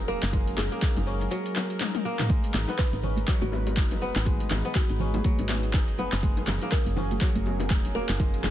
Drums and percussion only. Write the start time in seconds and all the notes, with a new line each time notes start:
0.09 shaker
0.23 clap, shaker
0.33 kick, closed hi-hat, low bongo, shaker
0.47 closed hi-hat, shaker
0.57 clap, high bongo, low bongo, shaker
0.71 closed hi-hat, shaker
0.82 kick, clap, closed hi-hat, shaker
0.97 closed hi-hat, low bongo, shaker
1.07 shaker
1.21 closed hi-hat, low bongo, shaker
1.32 closed hi-hat, shaker
1.46 closed hi-hat, shaker
1.56 clap, high bongo, low bongo, shaker
1.69 closed hi-hat, shaker
1.80 clap, closed hi-hat, high tom, low bongo, shaker
1.95 closed hi-hat, high tom, shaker
2.05 shaker
2.19 clap, closed hi-hat, mid tom, low bongo, shaker
2.29 kick, closed hi-hat, low bongo, muted conga, high conga, low conga, shaker
2.44 closed hi-hat, shaker
2.53 clap, high bongo, muted conga, low conga, shaker
2.68 closed hi-hat, low bongo, shaker
2.78 kick, clap, closed hi-hat, muted conga, shaker
2.93 closed hi-hat, low bongo
3.02 low conga, shaker
3.16 closed hi-hat, muted conga, high conga, shaker
3.27 kick, clap, closed hi-hat, low bongo, shaker
3.41 closed hi-hat, muted conga, high conga, shaker
3.52 high bongo, low bongo, shaker
3.65 closed hi-hat, high bongo, muted conga, shaker
3.77 kick, clap, closed hi-hat, high conga, shaker
3.91 closed hi-hat, low bongo
4.01 muted conga, high conga, shaker
4.15 clap, low bongo, shaker
4.25 kick, closed hi-hat, muted conga, high conga, low conga, shaker
4.40 closed hi-hat, shaker
4.50 clap, high bongo, low bongo, muted conga, low conga, shaker
4.64 closed hi-hat, shaker
4.75 kick, clap, closed hi-hat, low bongo, muted conga, shaker
4.89 closed hi-hat
5.00 low conga, shaker
5.14 closed hi-hat, low bongo, muted conga, high conga, shaker
5.24 kick, closed hi-hat, high conga, shaker
5.38 closed hi-hat, low bongo, muted conga, shaker
5.49 clap, high bongo, high conga, shaker
5.63 closed hi-hat, muted conga, shaker
5.74 kick, clap, closed hi-hat, low bongo, shaker
5.88 closed hi-hat
5.98 low bongo, muted conga, shaker
6.12 clap, shaker
6.22 kick, closed hi-hat, muted conga, high conga, low conga, shaker
6.36 closed hi-hat, low bongo, shaker
6.47 clap, high bongo, muted conga, low conga, shaker
6.62 closed hi-hat, low bongo, shaker
6.72 kick, clap, closed hi-hat, muted conga, shaker
6.86 closed hi-hat
6.96 low bongo, low conga, shaker
7.11 closed hi-hat, muted conga, high conga, shaker
7.21 kick, clap, closed hi-hat, low bongo, shaker
7.36 closed hi-hat, muted conga, high conga, shaker
7.45 high bongo, shaker
7.60 closed hi-hat, high bongo, low bongo, muted conga, shaker
7.70 kick, clap, closed hi-hat, high conga, shaker
7.85 closed hi-hat, low bongo
7.95 muted conga, high conga, shaker
8.09 clap, shaker
8.20 kick, closed hi-hat, low bongo, muted conga, high conga, low conga, shaker
8.33 closed hi-hat, shaker
8.43 clap, high bongo, low bongo, muted conga, low conga, shaker